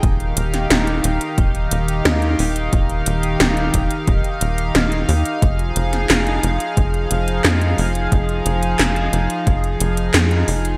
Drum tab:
HH |xxxxxxxxxxxxxxox|xxxxxxxxxxxxxxox|xxxxxxxxxxxxxxox|xxxxxxxxxxxxxxox|
CP |----------------|----------------|----x-------x---|----x-------x---|
SD |---oo-------o---|----o-------o---|---oo-------o---|----o-------o---|
BD |o-------o-------|o-----o-o-------|o-------o-------|o-------o-------|